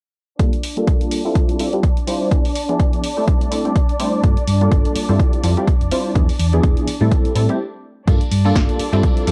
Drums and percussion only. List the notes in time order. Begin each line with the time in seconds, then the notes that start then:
0.40 kick, closed hi-hat
0.53 closed hi-hat
0.63 open hi-hat
0.77 closed hi-hat
0.88 kick, closed hi-hat
1.01 closed hi-hat
1.11 open hi-hat
1.35 kick, closed hi-hat
1.49 closed hi-hat
1.60 open hi-hat
1.73 closed hi-hat
1.83 kick, closed hi-hat
1.97 closed hi-hat
2.08 open hi-hat
2.31 kick, closed hi-hat
2.45 open hi-hat
2.55 open hi-hat
2.69 closed hi-hat
2.79 kick, closed hi-hat
2.93 closed hi-hat
3.03 open hi-hat
3.27 kick, closed hi-hat
3.41 closed hi-hat
3.51 open hi-hat
3.65 closed hi-hat
3.75 kick, closed hi-hat
3.89 closed hi-hat
3.99 open hi-hat
4.23 kick, closed hi-hat
4.37 closed hi-hat, tambourine
4.47 open hi-hat
4.61 closed hi-hat, tambourine
4.71 kick, closed hi-hat
4.85 closed hi-hat, tambourine
4.95 open hi-hat
5.09 tambourine
5.19 kick, closed hi-hat
5.33 closed hi-hat, tambourine
5.43 open hi-hat
5.57 closed hi-hat, tambourine
5.67 kick, closed hi-hat
5.81 closed hi-hat, tambourine
5.91 open hi-hat
6.05 tambourine
6.16 kick, closed hi-hat
6.29 open hi-hat, tambourine
6.40 open hi-hat
6.53 closed hi-hat, tambourine
6.64 kick, closed hi-hat
6.77 closed hi-hat, tambourine
6.88 open hi-hat
7.02 tambourine
7.11 kick, closed hi-hat, tambourine
7.25 closed hi-hat, tambourine
7.36 open hi-hat
7.49 closed hi-hat, tambourine
8.08 kick, closed hi-hat, tambourine
8.20 closed hi-hat, tambourine
8.31 open hi-hat
8.46 tambourine
8.55 kick, snare, closed hi-hat
8.69 closed hi-hat, tambourine
8.80 open hi-hat
8.93 closed hi-hat, tambourine
9.03 kick, closed hi-hat, tambourine
9.17 closed hi-hat, tambourine
9.27 open hi-hat